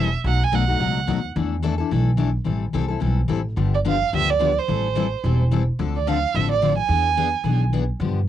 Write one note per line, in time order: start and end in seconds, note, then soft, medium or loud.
0.00 0.14 E1 medium
0.00 0.14 E5 medium
0.24 0.47 B1 medium
0.24 0.43 B2 soft
0.24 0.44 F#3 medium
0.24 0.44 A3 medium
0.24 0.44 D#4 medium
0.24 0.44 F#4 medium
0.24 0.45 F#5 medium
0.44 0.56 G#5 medium
0.52 0.76 B1 medium
0.52 0.62 B2 medium
0.52 0.63 F#3 medium
0.52 0.63 A3 medium
0.52 0.63 D#4 medium
0.52 0.63 F#4 loud
0.52 1.25 F#5 medium
0.68 0.80 A3 soft
0.68 0.80 D#4 medium
0.68 0.80 F#4 soft
0.80 1.04 C#2 medium
0.80 0.99 B2 medium
0.80 0.99 F#3 medium
0.80 0.99 A3 medium
0.80 0.99 D#4 medium
0.80 0.99 F#4 medium
1.07 1.31 D#2 medium
1.07 1.18 B2 medium
1.07 1.18 F#3 medium
1.07 1.18 A3 medium
1.07 1.18 D#4 medium
1.07 1.18 F#4 medium
1.36 1.80 E2 medium
1.36 1.54 E3 medium
1.36 1.54 A3 medium
1.36 1.54 D4 medium
1.36 1.55 E4 medium
1.36 1.55 A4 medium
1.62 1.73 E3 medium
1.62 1.73 A3 medium
1.62 1.74 D4 medium
1.62 1.74 E4 medium
1.62 1.74 A4 loud
1.78 1.91 D4 soft
1.78 1.91 E4 soft
1.78 1.90 A4 medium
1.91 2.36 B1 medium
1.91 2.09 E3 medium
1.91 2.09 A3 medium
1.91 2.10 D4 medium
1.91 2.10 E4 medium
1.91 2.10 A4 medium
2.17 2.28 E3 medium
2.17 2.29 A3 medium
2.17 2.29 D4 medium
2.17 2.29 E4 medium
2.17 2.29 A4 medium
2.44 2.69 A1 medium
2.44 2.64 E3 soft
2.44 2.64 G3 medium
2.44 2.64 C4 medium
2.44 2.64 E4 soft
2.44 2.65 A4 medium
2.73 2.97 C2 medium
2.73 2.84 E3 medium
2.73 2.84 G3 medium
2.73 2.84 C4 medium
2.73 2.85 E4 medium
2.73 2.85 A4 medium
2.88 3.00 C4 soft
2.88 3.00 E4 soft
2.88 3.00 A4 medium
3.00 3.25 B1 medium
3.00 3.19 E3 medium
3.00 3.19 G3 medium
3.00 3.20 C4 medium
3.00 3.20 E4 medium
3.00 3.20 A4 medium
3.28 3.53 A1 medium
3.28 3.39 E3 medium
3.28 3.39 G3 medium
3.28 3.40 C4 medium
3.28 3.40 E4 medium
3.28 3.40 A4 medium
3.56 4.01 G1 medium
3.56 3.75 D3 medium
3.56 3.75 F3 medium
3.56 3.76 B3 medium
3.56 3.76 D4 medium
3.56 3.76 G4 medium
3.74 3.79 D5 medium
3.85 3.95 D3 medium
3.85 3.95 F3 medium
3.85 3.95 B3 medium
3.85 3.95 D4 loud
3.85 3.96 G4 medium
3.85 4.12 F5 medium
4.13 4.57 D2 medium
4.13 4.31 D3 medium
4.13 4.31 F3 medium
4.13 4.31 B3 medium
4.13 4.31 D4 medium
4.13 4.32 G4 medium
4.13 4.32 E5 medium
4.30 4.60 D5 medium
4.39 4.50 D3 medium
4.39 4.50 F3 medium
4.39 4.51 B3 medium
4.39 4.51 D4 medium
4.39 4.51 G4 medium
4.59 5.40 C5 medium
4.68 5.12 A1 medium
4.68 4.86 E3 soft
4.68 4.87 G3 medium
4.68 4.87 C4 medium
4.68 4.87 E4 medium
4.68 4.87 A4 medium
4.95 5.06 E3 medium
4.95 5.06 G3 medium
4.95 5.06 C4 medium
4.95 5.06 E4 loud
4.95 5.06 A4 medium
5.24 5.68 E1 medium
5.24 5.42 E3 medium
5.24 5.43 G3 medium
5.24 5.43 C4 medium
5.24 5.43 E4 medium
5.24 5.43 A4 medium
5.51 5.61 E3 medium
5.51 5.62 G3 medium
5.51 5.62 C4 medium
5.51 5.62 E4 medium
5.51 5.62 A4 medium
5.79 6.23 D2 medium
5.79 5.97 D3 medium
5.79 5.97 F3 medium
5.79 5.97 C4 medium
5.79 5.97 D4 medium
5.79 5.98 A4 medium
5.96 6.09 D5 medium
6.07 6.17 D3 medium
6.07 6.17 F3 medium
6.07 6.17 C4 medium
6.07 6.17 D4 medium
6.07 6.18 A4 loud
6.07 6.37 F5 medium
6.34 6.78 A1 medium
6.34 6.53 D3 medium
6.34 6.53 F3 medium
6.34 6.53 C4 medium
6.34 6.53 D4 medium
6.34 6.53 A4 medium
6.34 6.50 E5 medium
6.52 6.76 D5 medium
6.62 6.72 D3 medium
6.62 6.72 F3 medium
6.62 6.72 C4 medium
6.62 6.73 D4 loud
6.62 6.73 A4 medium
6.78 7.57 G#5 medium
6.89 7.33 E2 medium
6.89 7.08 E3 medium
6.89 7.08 B3 medium
6.89 7.08 D4 medium
6.89 7.09 G#4 medium
7.17 7.27 E3 medium
7.17 7.27 B3 medium
7.17 7.28 D4 medium
7.17 7.28 G#4 loud
7.44 7.88 B1 medium
7.44 7.63 E3 medium
7.44 7.63 B3 medium
7.44 7.63 D4 medium
7.44 7.64 G#4 medium
7.73 7.83 E3 medium
7.73 7.83 B3 medium
7.73 7.83 D4 medium
7.73 7.83 G#4 medium
8.00 8.28 G2 medium
8.00 8.19 D3 medium
8.00 8.19 F3 medium
8.00 8.19 B3 medium
8.00 8.19 D4 medium
8.00 8.19 G4 medium